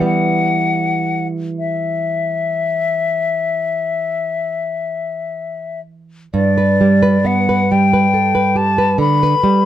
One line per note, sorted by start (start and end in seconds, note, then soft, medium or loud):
0.00 6.27 E3 soft
0.00 6.28 G3 soft
0.00 6.29 B3 soft
0.05 1.27 F#5 medium
1.59 5.80 E5 soft
6.34 8.96 G2 soft
6.34 7.28 D5 medium
6.58 6.94 B4 soft
6.81 7.17 G3 soft
7.03 7.39 B4 soft
7.25 7.61 B3 soft
7.25 7.73 F#5 medium
7.49 7.84 B4 soft
7.71 8.06 G3 soft
7.71 8.58 G5 medium
7.93 8.27 B4 soft
8.14 8.35 A4 soft
8.35 8.70 B4 soft
8.56 8.91 G4 soft
8.56 9.00 A5 medium
8.78 9.13 B4 medium
8.98 9.34 D3 soft
8.98 9.65 B5 medium
9.23 9.57 B4 soft
9.44 9.65 G3 soft